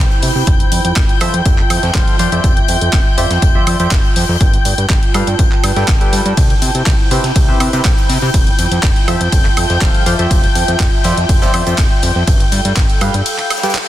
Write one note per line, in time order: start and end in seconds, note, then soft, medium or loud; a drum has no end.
0.00 0.47 E4 medium
0.00 1.08 C5 medium
0.00 6.36 G5 medium
0.00 1.16 B5 loud
0.00 6.36 G6 medium
0.11 closed hi-hat soft
0.22 0.31 C3 loud
0.22 open hi-hat medium
0.22 open hi-hat loud
0.36 0.43 C3 loud
0.47 0.64 F1 loud
0.47 6.37 F4 medium
0.47 kick loud
0.47 closed hi-hat medium
0.60 closed hi-hat soft
0.72 0.80 F2 medium
0.72 closed hi-hat medium
0.72 open hi-hat loud
0.85 0.92 F2 medium
0.85 closed hi-hat medium
0.96 1.05 F1 medium
0.96 kick loud
0.96 snare loud
0.96 clap loud
0.96 closed hi-hat medium
1.09 5.19 E5 medium
1.09 closed hi-hat soft
1.21 1.30 F2 loud
1.21 1.35 F3 loud
1.21 1.35 F4 medium
1.21 1.35 A4 medium
1.21 1.35 C5 medium
1.21 1.35 E5 loud
1.21 closed hi-hat medium
1.21 open hi-hat loud
1.21 high woodblock medium
1.25 3.08 A5 medium
1.34 1.42 F2 medium
1.34 closed hi-hat medium
1.46 1.62 F1 loud
1.46 kick loud
1.46 closed hi-hat medium
1.58 clap soft
1.70 1.79 F2 medium
1.70 snare soft
1.70 closed hi-hat medium
1.70 open hi-hat loud
1.70 high woodblock medium
1.83 1.91 F2 loud
1.83 snare soft
1.83 closed hi-hat soft
1.94 2.03 F1 medium
1.94 2.17 F3 medium
1.94 2.17 F4 medium
1.94 2.17 A4 medium
1.94 2.17 C5 medium
1.94 2.17 F5 loud
1.94 kick loud
1.94 snare loud
1.94 clap loud
1.94 closed hi-hat medium
1.94 closed hi-hat loud
2.08 closed hi-hat soft
2.19 2.28 F2 loud
2.19 2.30 F3 medium
2.19 2.30 F4 medium
2.19 2.30 C5 medium
2.19 2.30 D5 medium
2.19 2.30 F5 loud
2.19 closed hi-hat medium
2.19 open hi-hat loud
2.32 2.40 F2 loud
2.32 2.53 F3 medium
2.32 2.53 F4 medium
2.32 2.53 C5 medium
2.32 2.53 D5 medium
2.32 2.53 E5 medium
2.32 closed hi-hat soft
2.44 2.61 F1 loud
2.44 kick loud
2.44 closed hi-hat medium
2.57 closed hi-hat soft
2.68 2.77 F2 medium
2.68 closed hi-hat medium
2.68 open hi-hat loud
2.75 4.41 C6 medium
2.81 2.89 F2 medium
2.81 closed hi-hat medium
2.93 3.02 F1 medium
2.93 kick loud
2.93 snare loud
2.93 clap loud
2.93 closed hi-hat medium
3.18 3.26 F2 loud
3.18 3.31 F3 medium
3.18 3.31 F4 medium
3.18 3.31 C5 medium
3.18 3.31 D5 medium
3.18 3.31 E5 medium
3.18 closed hi-hat medium
3.18 open hi-hat loud
3.30 3.38 F2 medium
3.30 snare soft
3.30 closed hi-hat medium
3.42 3.59 F1 loud
3.42 kick loud
3.42 closed hi-hat loud
3.42 closed hi-hat medium
3.55 3.65 F3 medium
3.55 3.65 F4 medium
3.55 3.65 C5 medium
3.55 3.65 D5 medium
3.55 3.65 E5 loud
3.67 3.75 F2 medium
3.67 3.78 F3 medium
3.67 3.78 F4 medium
3.67 3.78 C5 medium
3.67 3.78 D5 medium
3.67 3.78 E5 loud
3.67 closed hi-hat medium
3.67 open hi-hat loud
3.67 high woodblock medium
3.79 3.88 F2 loud
3.79 3.92 F3 medium
3.79 3.92 F4 medium
3.79 3.92 C5 medium
3.79 3.92 D5 medium
3.79 3.92 E5 medium
3.79 closed hi-hat soft
3.91 4.00 F1 medium
3.91 kick loud
3.91 snare loud
3.91 clap loud
3.91 closed hi-hat loud
3.91 closed hi-hat medium
4.04 closed hi-hat soft
4.16 4.25 F2 loud
4.16 open hi-hat loud
4.16 open hi-hat medium
4.29 4.37 F2 loud
4.41 4.57 G1 loud
4.41 kick loud
4.41 closed hi-hat medium
4.54 closed hi-hat soft
4.65 4.74 G2 medium
4.65 closed hi-hat medium
4.65 open hi-hat loud
4.73 7.16 A5 medium
4.78 4.86 G2 medium
4.78 closed hi-hat medium
4.82 6.37 B4 medium
4.89 4.98 G1 medium
4.89 kick loud
4.89 snare loud
4.89 clap loud
4.89 closed hi-hat medium
5.03 closed hi-hat soft
5.14 5.23 G2 loud
5.14 5.28 G3 loud
5.14 5.28 G4 medium
5.14 5.28 A4 medium
5.14 5.28 B4 medium
5.14 5.28 F5 loud
5.14 closed hi-hat medium
5.14 open hi-hat loud
5.14 high woodblock medium
5.27 5.35 G2 medium
5.27 closed hi-hat medium
5.39 5.48 G1 medium
5.39 kick loud
5.39 closed hi-hat medium
5.52 clap soft
5.63 5.72 G2 loud
5.63 snare soft
5.63 closed hi-hat medium
5.63 open hi-hat loud
5.63 high woodblock medium
5.76 5.84 G2 medium
5.76 5.89 G3 loud
5.76 5.89 G4 medium
5.76 5.89 A4 medium
5.76 5.89 B4 medium
5.76 5.89 G5 loud
5.76 snare soft
5.76 closed hi-hat soft
5.88 5.97 G1 medium
5.88 kick loud
5.88 snare loud
5.88 clap loud
5.88 closed hi-hat medium
5.88 closed hi-hat loud
6.01 6.36 G3 medium
6.01 6.36 G4 medium
6.01 6.36 A4 medium
6.01 6.36 B4 medium
6.01 6.36 G5 loud
6.01 closed hi-hat soft
6.13 6.21 G2 medium
6.13 closed hi-hat medium
6.13 open hi-hat loud
6.26 6.33 G2 medium
6.26 closed hi-hat soft
6.37 6.54 C2 loud
6.37 8.34 E4 medium
6.37 13.88 G5 medium
6.37 13.88 G6 medium
6.37 kick loud
6.37 closed hi-hat medium
6.37 closed hi-hat loud
6.37 ride medium
6.50 closed hi-hat soft
6.59 6.71 C3 medium
6.59 9.03 C5 medium
6.59 closed hi-hat medium
6.59 open hi-hat loud
6.75 6.83 C3 medium
6.75 closed hi-hat medium
6.86 6.95 C2 medium
6.86 kick loud
6.86 snare loud
6.86 clap loud
6.86 closed hi-hat medium
6.86 ride medium
7.11 7.20 C3 loud
7.11 7.25 C4 medium
7.11 7.25 G4 medium
7.11 7.25 B4 medium
7.11 7.25 C5 medium
7.11 7.25 E5 medium
7.11 closed hi-hat medium
7.11 open hi-hat loud
7.24 7.32 C3 medium
7.24 9.03 B5 medium
7.24 snare soft
7.24 closed hi-hat medium
7.36 7.52 C2 loud
7.36 kick loud
7.36 closed hi-hat medium
7.36 ride medium
7.49 7.59 C4 medium
7.49 7.59 G4 medium
7.49 7.59 B4 medium
7.49 7.59 C5 medium
7.49 7.59 E5 loud
7.60 7.69 C3 medium
7.60 7.71 C4 medium
7.60 7.71 G4 medium
7.60 7.71 B4 medium
7.60 7.71 C5 medium
7.60 7.71 E5 loud
7.60 closed hi-hat medium
7.60 open hi-hat loud
7.60 high woodblock medium
7.73 7.81 C3 loud
7.73 7.86 C4 medium
7.73 7.86 G4 medium
7.73 7.86 B4 medium
7.73 7.86 C5 medium
7.73 7.86 E5 medium
7.73 closed hi-hat soft
7.85 7.93 C2 medium
7.85 kick loud
7.85 snare loud
7.85 clap loud
7.85 closed hi-hat medium
7.85 ride medium
7.98 closed hi-hat soft
8.09 8.18 C3 loud
8.09 open hi-hat loud
8.09 open hi-hat medium
8.22 8.30 C3 loud
8.34 8.51 F1 loud
8.34 13.06 F4 medium
8.34 kick loud
8.34 closed hi-hat medium
8.34 ride medium
8.47 closed hi-hat soft
8.57 8.67 F2 medium
8.57 12.27 E5 medium
8.57 closed hi-hat medium
8.57 open hi-hat loud
8.66 10.95 A5 medium
8.71 8.79 F2 medium
8.71 closed hi-hat medium
8.83 8.92 F1 medium
8.83 kick loud
8.83 snare loud
8.83 clap loud
8.83 closed hi-hat loud
8.83 closed hi-hat medium
8.83 ride medium
8.96 closed hi-hat soft
9.08 9.16 F2 loud
9.08 9.22 F3 loud
9.08 9.22 F4 medium
9.08 9.22 A4 medium
9.08 9.22 C5 medium
9.08 9.22 E5 loud
9.08 closed hi-hat medium
9.08 open hi-hat loud
9.08 high woodblock medium
9.21 9.29 F2 medium
9.21 closed hi-hat medium
9.32 9.49 F1 loud
9.32 kick loud
9.32 closed hi-hat medium
9.32 closed hi-hat loud
9.32 ride medium
9.45 clap soft
9.57 9.66 F2 medium
9.57 snare soft
9.57 closed hi-hat medium
9.57 open hi-hat loud
9.57 high woodblock medium
9.69 9.78 F2 loud
9.69 snare soft
9.69 closed hi-hat soft
9.81 9.90 F1 medium
9.81 10.03 F3 medium
9.81 10.03 F4 medium
9.81 10.03 A4 medium
9.81 10.03 C5 medium
9.81 10.03 F5 loud
9.81 kick loud
9.81 snare loud
9.81 clap loud
9.81 closed hi-hat medium
9.81 ride medium
9.95 closed hi-hat soft
10.06 10.15 F2 loud
10.06 10.17 F3 medium
10.06 10.17 F4 medium
10.06 10.17 C5 medium
10.06 10.17 D5 medium
10.06 10.17 F5 loud
10.06 closed hi-hat medium
10.06 open hi-hat loud
10.19 10.27 F2 loud
10.19 10.40 F3 medium
10.19 10.40 F4 medium
10.19 10.40 C5 medium
10.19 10.40 D5 medium
10.19 10.40 E5 medium
10.19 closed hi-hat soft
10.31 10.48 F1 loud
10.31 kick loud
10.31 closed hi-hat medium
10.31 ride medium
10.44 closed hi-hat soft
10.55 10.64 F2 medium
10.55 closed hi-hat medium
10.55 open hi-hat loud
10.68 10.76 F2 medium
10.68 closed hi-hat medium
10.80 10.89 F1 medium
10.80 kick loud
10.80 snare loud
10.80 clap loud
10.80 closed hi-hat medium
10.80 ride medium
11.04 11.13 F2 loud
11.04 11.18 F3 medium
11.04 11.18 F4 medium
11.04 11.18 C5 medium
11.04 11.18 D5 medium
11.04 11.18 E5 medium
11.04 12.28 C6 medium
11.04 snare loud
11.04 closed hi-hat medium
11.04 open hi-hat loud
11.17 11.25 F2 medium
11.17 closed hi-hat medium
11.29 11.46 F1 loud
11.29 kick loud
11.29 closed hi-hat medium
11.29 ride medium
11.42 11.52 F3 medium
11.42 11.52 F4 medium
11.42 11.52 C5 medium
11.42 11.52 D5 medium
11.42 11.52 E5 loud
11.42 snare loud
11.42 closed hi-hat medium
11.54 11.62 F2 medium
11.54 11.65 F3 medium
11.54 11.65 F4 medium
11.54 11.65 C5 medium
11.54 11.65 D5 medium
11.54 11.65 E5 loud
11.54 open hi-hat loud
11.54 high woodblock medium
11.67 11.74 F2 loud
11.67 11.79 F3 medium
11.67 11.79 F4 medium
11.67 11.79 C5 medium
11.67 11.79 D5 medium
11.67 11.79 E5 medium
11.67 closed hi-hat soft
11.67 closed hi-hat medium
11.78 11.87 F1 medium
11.78 kick loud
11.78 snare loud
11.78 clap loud
11.78 closed hi-hat medium
11.78 ride medium
12.02 12.11 F2 loud
12.02 closed hi-hat medium
12.02 open hi-hat loud
12.16 12.24 F2 loud
12.27 12.44 G1 loud
12.27 13.88 A4 medium
12.27 kick loud
12.27 closed hi-hat medium
12.27 ride medium
12.40 closed hi-hat soft
12.52 12.61 G2 medium
12.52 closed hi-hat medium
12.52 open hi-hat loud
12.65 12.73 G2 medium
12.65 closed hi-hat medium
12.76 12.85 G1 medium
12.76 kick loud
12.76 snare loud
12.76 clap loud
12.76 closed hi-hat medium
12.76 ride medium
12.90 closed hi-hat soft
12.96 13.88 F5 medium
13.01 13.10 G2 loud
13.01 13.15 G3 loud
13.01 13.15 G4 medium
13.01 13.15 A4 medium
13.01 13.15 B4 medium
13.01 13.15 F5 loud
13.01 closed hi-hat medium
13.01 open hi-hat loud
13.01 high woodblock medium
13.14 13.22 G2 medium
13.14 13.88 B5 loud
13.14 closed hi-hat medium
13.26 closed hi-hat medium
13.26 closed hi-hat loud
13.26 ride medium
13.38 clap soft
13.38 closed hi-hat soft
13.50 snare medium
13.50 closed hi-hat medium
13.50 open hi-hat loud
13.50 high woodblock medium
13.57 snare loud
13.57 closed hi-hat medium
13.63 13.76 G3 loud
13.63 13.76 G4 medium
13.63 13.76 A4 medium
13.63 13.76 B4 medium
13.63 13.76 G5 loud
13.63 snare medium
13.63 closed hi-hat soft
13.63 closed hi-hat medium
13.69 snare medium
13.69 closed hi-hat medium
13.75 snare loud
13.75 clap loud
13.75 closed hi-hat medium
13.75 ride medium